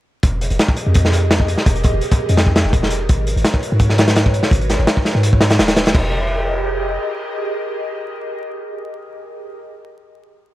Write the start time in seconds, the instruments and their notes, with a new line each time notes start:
0.23 808-style bass F1, analog synth pad G4 G#4 A#4 D#5, kick, closed hi-hat
0.41 closed hi-hat
0.50 808-style bass F1, closed hi-hat
0.59 snare, closed hi-hat
0.69 kick
0.77 closed hi-hat
0.87 808-style bass F2
0.94 kick, closed hi-hat
1.05 snare
1.13 closed hi-hat
1.31 snare, closed hi-hat
1.40 kick
1.48 closed hi-hat
1.57 snare
1.66 808-style bass F1, kick, closed hi-hat
1.75 closed hi-hat
1.84 kick, closed hi-hat
1.94 808-style bass F1
2.01 closed hi-hat
2.11 kick, closed hi-hat
2.29 808-style bass F2, closed hi-hat
2.37 snare, closed hi-hat
2.47 kick
2.56 snare, closed hi-hat
2.65 808-style bass F1
2.73 kick, closed hi-hat
2.83 snare
2.91 closed hi-hat
3.09 808-style bass G#1, analog synth pad F#4 B4 C#5, kick, closed hi-hat
3.27 closed hi-hat
3.36 808-style bass G#1, closed hi-hat
3.44 snare, closed hi-hat
3.54 kick
3.63 closed hi-hat
3.72 808-style bass G#2
3.80 kick, closed hi-hat
3.90 snare
3.98 snare, closed hi-hat
4.08 snare, closed hi-hat
4.16 snare, closed hi-hat
4.26 kick
4.34 closed hi-hat
4.43 snare
4.51 808-style bass G#1, kick, closed hi-hat
4.61 closed hi-hat
4.70 snare, closed hi-hat
4.79 808-style bass G#1
4.87 snare, closed hi-hat
4.97 kick
5.05 snare, closed hi-hat
5.15 808-style bass G#2
5.23 closed hi-hat
5.33 kick
5.41 snare, closed hi-hat
5.50 snare, closed hi-hat
5.59 808-style bass D#1, snare, closed hi-hat
5.68 snare, closed hi-hat
5.76 snare, closed hi-hat
5.86 snare, closed hi-hat
5.95 808-style bass F1, analog synth pad G4 G#4 A#4 D#5, kick, crash